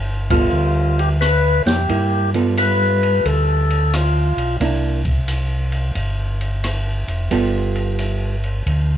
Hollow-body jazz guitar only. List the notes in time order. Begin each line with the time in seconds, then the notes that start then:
0.31 G3 B3 F4 A4
1.90 A#3 E4
2.34 G3 B3 F4 A4
4.61 A#3 D4 E4
7.31 G3 B3 F4 A4